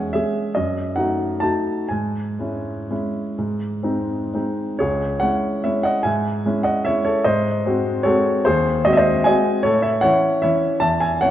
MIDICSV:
0, 0, Header, 1, 2, 480
1, 0, Start_track
1, 0, Key_signature, 4, "minor"
1, 0, Tempo, 408719
1, 652, Time_signature, 3, 2, 24, 8
1, 1132, Tempo, 452148
1, 1612, Tempo, 494234
1, 3052, Tempo, 473934
1, 4972, Tempo, 411523
1, 7372, Tempo, 397088
1, 12757, End_track
2, 0, Start_track
2, 0, Title_t, "Grand piano"
2, 0, Program_c, 0, 0
2, 0, Control_c, 0, 64, 127
2, 0, Note_on_c, 0, 40, 45
2, 0, Note_on_c, 0, 56, 39
2, 0, Note_on_c, 0, 61, 39
2, 0, Note_on_c, 0, 68, 42
2, 0, Note_on_c, 0, 78, 68
2, 0, Note_on_c, 0, 80, 70
2, 131, Note_off_c, 0, 56, 0
2, 132, Note_off_c, 0, 61, 0
2, 133, Note_off_c, 0, 68, 0
2, 152, Note_on_c, 0, 76, 67
2, 164, Note_off_c, 0, 78, 0
2, 178, Note_on_c, 0, 56, 37
2, 179, Note_on_c, 0, 68, 40
2, 184, Note_on_c, 0, 61, 37
2, 192, Control_c, 0, 64, 0
2, 200, Note_off_c, 0, 80, 0
2, 204, Note_off_c, 0, 40, 0
2, 606, Note_off_c, 0, 56, 0
2, 607, Note_off_c, 0, 68, 0
2, 609, Note_off_c, 0, 61, 0
2, 640, Note_off_c, 0, 76, 0
2, 642, Note_on_c, 0, 75, 56
2, 662, Note_on_c, 0, 42, 43
2, 887, Control_c, 0, 64, 127
2, 1123, Note_off_c, 0, 42, 0
2, 1124, Note_on_c, 0, 78, 60
2, 1127, Note_off_c, 0, 75, 0
2, 1143, Note_on_c, 0, 63, 34
2, 1145, Note_on_c, 0, 57, 34
2, 1151, Note_on_c, 0, 66, 37
2, 1574, Note_off_c, 0, 63, 0
2, 1575, Note_off_c, 0, 57, 0
2, 1579, Note_off_c, 0, 66, 0
2, 1597, Note_on_c, 0, 81, 65
2, 1608, Note_off_c, 0, 78, 0
2, 1619, Note_on_c, 0, 57, 34
2, 1621, Note_on_c, 0, 63, 34
2, 1621, Note_on_c, 0, 66, 35
2, 1623, Control_c, 0, 64, 0
2, 2046, Note_off_c, 0, 57, 0
2, 2047, Note_off_c, 0, 63, 0
2, 2047, Note_off_c, 0, 66, 0
2, 2068, Note_on_c, 0, 80, 53
2, 2074, Note_off_c, 0, 81, 0
2, 2089, Note_on_c, 0, 44, 41
2, 2309, Control_c, 0, 64, 127
2, 2552, Note_off_c, 0, 44, 0
2, 2560, Note_on_c, 0, 56, 32
2, 2571, Note_on_c, 0, 64, 33
2, 2574, Note_on_c, 0, 61, 29
2, 3013, Note_off_c, 0, 56, 0
2, 3018, Note_off_c, 0, 64, 0
2, 3020, Note_off_c, 0, 61, 0
2, 3060, Note_on_c, 0, 56, 33
2, 3061, Note_on_c, 0, 61, 32
2, 3069, Note_on_c, 0, 64, 37
2, 3071, Control_c, 0, 64, 0
2, 3502, Note_off_c, 0, 56, 0
2, 3503, Note_off_c, 0, 61, 0
2, 3507, Note_off_c, 0, 64, 0
2, 3543, Note_on_c, 0, 44, 41
2, 3739, Control_c, 0, 64, 127
2, 3990, Note_off_c, 0, 44, 0
2, 3995, Note_on_c, 0, 56, 30
2, 3999, Note_on_c, 0, 60, 31
2, 4007, Note_on_c, 0, 63, 34
2, 4457, Note_off_c, 0, 56, 0
2, 4459, Note_off_c, 0, 60, 0
2, 4463, Note_off_c, 0, 63, 0
2, 4511, Note_on_c, 0, 60, 30
2, 4513, Note_on_c, 0, 56, 31
2, 4517, Control_c, 0, 64, 0
2, 4520, Note_on_c, 0, 63, 35
2, 4741, Note_off_c, 0, 80, 0
2, 4936, Note_off_c, 0, 60, 0
2, 4938, Note_off_c, 0, 56, 0
2, 4941, Note_off_c, 0, 63, 0
2, 4965, Note_on_c, 0, 73, 66
2, 4979, Note_on_c, 0, 68, 46
2, 4991, Note_on_c, 0, 37, 47
2, 5198, Control_c, 0, 64, 127
2, 5426, Note_off_c, 0, 68, 0
2, 5438, Note_off_c, 0, 73, 0
2, 5441, Note_on_c, 0, 78, 73
2, 5451, Note_off_c, 0, 37, 0
2, 5456, Note_on_c, 0, 73, 54
2, 5471, Note_on_c, 0, 56, 40
2, 5473, Control_c, 0, 64, 0
2, 5476, Note_on_c, 0, 64, 40
2, 5478, Note_on_c, 0, 61, 38
2, 5917, Note_off_c, 0, 56, 0
2, 5920, Note_off_c, 0, 64, 0
2, 5921, Note_off_c, 0, 61, 0
2, 5921, Note_off_c, 0, 73, 0
2, 5949, Note_off_c, 0, 78, 0
2, 5956, Note_on_c, 0, 76, 59
2, 5969, Note_on_c, 0, 73, 46
2, 5975, Note_on_c, 0, 61, 40
2, 5977, Note_on_c, 0, 56, 38
2, 5979, Note_on_c, 0, 64, 43
2, 6185, Note_on_c, 0, 78, 71
2, 6188, Note_off_c, 0, 73, 0
2, 6198, Note_off_c, 0, 76, 0
2, 6205, Note_on_c, 0, 75, 52
2, 6390, Note_off_c, 0, 61, 0
2, 6392, Note_off_c, 0, 56, 0
2, 6393, Note_off_c, 0, 64, 0
2, 6414, Note_on_c, 0, 80, 70
2, 6415, Note_off_c, 0, 75, 0
2, 6420, Note_off_c, 0, 78, 0
2, 6432, Note_on_c, 0, 76, 52
2, 6436, Note_on_c, 0, 44, 47
2, 6647, Control_c, 0, 64, 127
2, 6881, Note_off_c, 0, 44, 0
2, 6905, Control_c, 0, 64, 0
2, 6909, Note_on_c, 0, 56, 42
2, 6916, Note_on_c, 0, 61, 39
2, 6916, Note_on_c, 0, 64, 44
2, 7086, Note_off_c, 0, 76, 0
2, 7117, Note_on_c, 0, 78, 69
2, 7124, Note_off_c, 0, 80, 0
2, 7129, Note_on_c, 0, 75, 51
2, 7334, Note_off_c, 0, 56, 0
2, 7338, Note_off_c, 0, 61, 0
2, 7338, Note_off_c, 0, 64, 0
2, 7354, Note_off_c, 0, 75, 0
2, 7365, Note_off_c, 0, 78, 0
2, 7365, Note_on_c, 0, 76, 80
2, 7383, Note_on_c, 0, 73, 62
2, 7393, Note_on_c, 0, 56, 39
2, 7393, Note_on_c, 0, 61, 42
2, 7399, Note_on_c, 0, 64, 44
2, 7588, Note_off_c, 0, 73, 0
2, 7606, Note_on_c, 0, 73, 68
2, 7612, Note_off_c, 0, 76, 0
2, 7615, Note_on_c, 0, 69, 54
2, 7812, Note_off_c, 0, 56, 0
2, 7812, Note_off_c, 0, 61, 0
2, 7816, Note_off_c, 0, 64, 0
2, 7832, Note_off_c, 0, 69, 0
2, 7844, Note_off_c, 0, 73, 0
2, 7846, Note_on_c, 0, 75, 74
2, 7854, Note_on_c, 0, 72, 58
2, 7863, Note_on_c, 0, 44, 51
2, 8090, Control_c, 0, 64, 127
2, 8312, Note_off_c, 0, 44, 0
2, 8344, Note_on_c, 0, 56, 43
2, 8353, Note_on_c, 0, 60, 47
2, 8357, Note_on_c, 0, 66, 44
2, 8762, Note_off_c, 0, 72, 0
2, 8772, Note_off_c, 0, 56, 0
2, 8777, Note_off_c, 0, 60, 0
2, 8779, Note_off_c, 0, 66, 0
2, 8799, Note_on_c, 0, 73, 78
2, 8806, Note_off_c, 0, 75, 0
2, 8813, Note_on_c, 0, 69, 58
2, 8822, Control_c, 0, 64, 0
2, 8823, Note_on_c, 0, 56, 50
2, 8826, Note_on_c, 0, 60, 45
2, 8830, Note_on_c, 0, 66, 49
2, 9261, Note_off_c, 0, 56, 0
2, 9263, Note_off_c, 0, 60, 0
2, 9265, Note_off_c, 0, 66, 0
2, 9270, Note_off_c, 0, 69, 0
2, 9298, Note_off_c, 0, 73, 0
2, 9302, Note_on_c, 0, 72, 76
2, 9318, Note_on_c, 0, 68, 53
2, 9320, Note_on_c, 0, 39, 58
2, 9531, Control_c, 0, 64, 127
2, 9759, Note_off_c, 0, 68, 0
2, 9779, Note_off_c, 0, 39, 0
2, 9784, Note_off_c, 0, 72, 0
2, 9784, Note_on_c, 0, 75, 84
2, 9793, Note_on_c, 0, 56, 44
2, 9805, Note_on_c, 0, 60, 46
2, 9805, Note_on_c, 0, 66, 52
2, 9866, Note_off_c, 0, 75, 0
2, 9882, Note_on_c, 0, 76, 72
2, 9936, Note_on_c, 0, 75, 78
2, 9947, Note_on_c, 0, 72, 57
2, 9956, Note_off_c, 0, 76, 0
2, 10227, Note_off_c, 0, 56, 0
2, 10233, Note_off_c, 0, 60, 0
2, 10233, Note_off_c, 0, 66, 0
2, 10248, Note_off_c, 0, 72, 0
2, 10260, Note_on_c, 0, 80, 87
2, 10265, Note_off_c, 0, 75, 0
2, 10281, Note_on_c, 0, 56, 47
2, 10284, Control_c, 0, 64, 0
2, 10286, Note_on_c, 0, 75, 66
2, 10291, Note_on_c, 0, 60, 50
2, 10302, Note_on_c, 0, 66, 51
2, 10704, Note_off_c, 0, 56, 0
2, 10709, Note_off_c, 0, 60, 0
2, 10715, Note_off_c, 0, 66, 0
2, 10720, Note_off_c, 0, 75, 0
2, 10730, Note_on_c, 0, 73, 82
2, 10740, Note_off_c, 0, 80, 0
2, 10750, Note_on_c, 0, 69, 63
2, 10759, Note_on_c, 0, 45, 56
2, 10953, Note_off_c, 0, 73, 0
2, 10962, Note_off_c, 0, 69, 0
2, 10964, Note_on_c, 0, 76, 74
2, 10971, Note_on_c, 0, 73, 56
2, 10973, Control_c, 0, 64, 127
2, 11188, Note_off_c, 0, 73, 0
2, 11192, Note_on_c, 0, 78, 90
2, 11202, Note_off_c, 0, 45, 0
2, 11204, Note_off_c, 0, 76, 0
2, 11206, Note_on_c, 0, 73, 69
2, 11213, Note_on_c, 0, 52, 45
2, 11219, Control_c, 0, 64, 0
2, 11224, Note_on_c, 0, 61, 45
2, 11227, Note_on_c, 0, 64, 51
2, 11646, Note_off_c, 0, 52, 0
2, 11652, Note_off_c, 0, 61, 0
2, 11654, Note_off_c, 0, 64, 0
2, 11657, Note_off_c, 0, 73, 0
2, 11684, Note_off_c, 0, 78, 0
2, 11684, Note_on_c, 0, 76, 70
2, 11699, Note_on_c, 0, 52, 48
2, 11701, Note_on_c, 0, 73, 55
2, 11708, Note_on_c, 0, 64, 48
2, 11709, Note_on_c, 0, 61, 46
2, 12117, Note_off_c, 0, 52, 0
2, 12122, Note_off_c, 0, 64, 0
2, 12123, Note_off_c, 0, 61, 0
2, 12132, Note_off_c, 0, 73, 0
2, 12143, Note_off_c, 0, 76, 0
2, 12144, Note_on_c, 0, 81, 88
2, 12161, Note_on_c, 0, 76, 62
2, 12163, Note_on_c, 0, 40, 53
2, 12380, Note_off_c, 0, 76, 0
2, 12384, Control_c, 0, 64, 127
2, 12388, Note_off_c, 0, 81, 0
2, 12391, Note_on_c, 0, 80, 72
2, 12404, Note_on_c, 0, 76, 57
2, 12631, Note_off_c, 0, 40, 0
2, 12631, Note_off_c, 0, 76, 0
2, 12639, Note_on_c, 0, 78, 80
2, 12642, Note_off_c, 0, 80, 0
2, 12654, Note_on_c, 0, 73, 66
2, 12661, Control_c, 0, 64, 0
2, 12661, Note_on_c, 0, 52, 42
2, 12665, Note_on_c, 0, 61, 43
2, 12673, Note_on_c, 0, 64, 44
2, 12757, Note_off_c, 0, 52, 0
2, 12757, Note_off_c, 0, 61, 0
2, 12757, Note_off_c, 0, 64, 0
2, 12757, Note_off_c, 0, 73, 0
2, 12757, Note_off_c, 0, 78, 0
2, 12757, End_track
0, 0, End_of_file